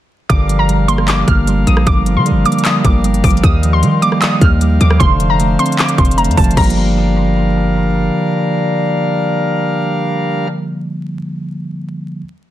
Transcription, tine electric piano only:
0.30 D3
0.49 F3
0.69 G3
0.88 A#3
1.28 A#3
1.47 G3
1.67 F3
1.87 D3
2.06 F3
2.26 G3
2.46 A#3
2.85 A#3
3.04 G3
3.24 F3
3.43 D#3
3.63 F3
3.83 G3
4.03 A#3
4.42 A#3
4.61 G3
4.81 F3
5.00 D3
5.20 F3
5.40 A3
5.59 C4
5.98 C4
6.18 A3
6.38 F3
6.51 D3 F3
6.59 G3
6.63 A#3

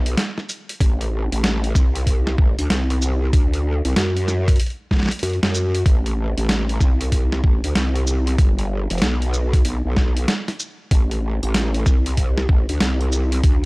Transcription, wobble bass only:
Already playing: B1
0.80 A1
1.32 A1
1.75 C2
2.38 A1
2.59 D2
2.70 C2
3.33 D2
3.85 C2
3.97 F#2
5.23 F#2
5.43 F#2
5.86 A1
6.37 A1
6.81 C2
7.44 A1
7.64 D2
7.75 C2
8.38 G1
8.91 F1
9.02 B1
9.65 B1
9.85 B1
10.91 A1
11.43 A1
11.86 C2
12.49 A1
12.70 D2
12.81 C2
13.44 D2

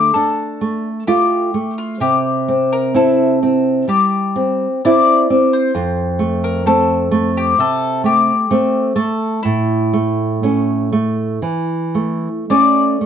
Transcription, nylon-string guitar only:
Already playing: D3 A3
0.16 D4
0.61 A3
1.07 A3 F4
1.54 A3
2.00 C3
2.48 C4
2.94 C4 E4
3.43 C4
3.88 G3
4.36 C4
4.85 C4 E4
5.30 C4
5.75 F2
6.19 A3
6.66 A3 C4
7.11 A3
7.58 C3
8.04 A3
8.51 A3 C4
8.96 A3
9.45 A2
9.93 A3
10.43 A3 C#4
10.92 A3
11.42 E3
11.95 A3
12.50 A3 C#4
13.01 A3

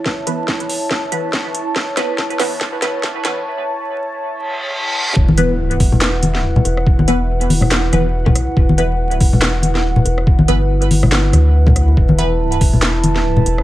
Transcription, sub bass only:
5.16 E1
5.80 E1
6.65 E1
7.93 E1
8.57 E1
9.01 D#1
9.21 E1
9.80 D#1
10.06 E1
10.48 G1
11.33 D2
11.97 E1
12.61 E1
13.46 E1

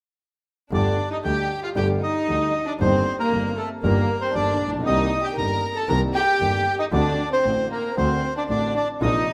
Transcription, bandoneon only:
0.74 D5
1.13 D#5
1.24 G5
1.64 F5
1.76 G5
2.03 D#5
2.68 D5
2.80 C5
3.20 A#4
3.58 A4
3.83 A#4
4.21 C5
4.35 D5
4.86 D#5
5.24 G5
5.38 A#5
5.76 A5
5.89 A#5
6.15 G5
6.79 D#5
6.93 D5
7.32 C5
7.72 A#4
7.98 C5
8.38 D5
8.50 D5
8.77 D5
9.02 D#5

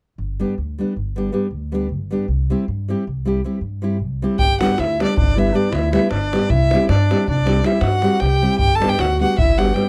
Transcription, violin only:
4.39 G5
4.60 F#5
4.80 E5
5.03 D5
5.18 D5
5.39 E5
5.55 D5
5.74 E5
5.93 E5
6.11 D5
6.51 E5
6.89 D5
7.29 D5
7.66 E5
7.81 F#5
8.21 G5
8.59 G5
8.75 A5
8.89 G5
9.01 F#5
9.21 F#5
9.38 E5
9.58 F#5
9.74 G5

